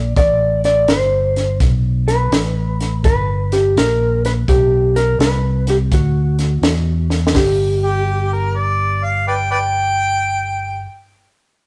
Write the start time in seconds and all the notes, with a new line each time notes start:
Already playing: A#1 D5
0.16 A1 D5, kick, snare, closed hi-hat
0.64 D5, snare, closed hi-hat
0.88 G1 C5, snare, closed hi-hat
1.36 snare, closed hi-hat
1.60 B1, kick, snare, closed hi-hat
2.08 B4, snare, closed hi-hat
2.32 A1, snare, closed hi-hat
2.81 snare, closed hi-hat
3.04 G1 B4, kick, snare, closed hi-hat
3.52 G4, snare, closed hi-hat
3.77 A#1 A#4, snare, closed hi-hat
4.25 B4, snare, closed hi-hat
4.48 B1 G4, kick, snare, closed hi-hat
4.96 A#4, snare, closed hi-hat
5.19 C2 B4, snare, closed hi-hat
5.67 G4, snare, closed hi-hat
5.91 D2 F#4, kick, snare, closed hi-hat
6.39 snare, closed hi-hat
6.62 E2, snare, closed hi-hat
7.10 snare
7.27 snare
7.35 G1 G4, kick, snare, open hi-hat
7.84 G4
8.33 A#4
8.56 D5
9.03 F5
9.27 B4 D5 G5
9.51 B4 D5 G5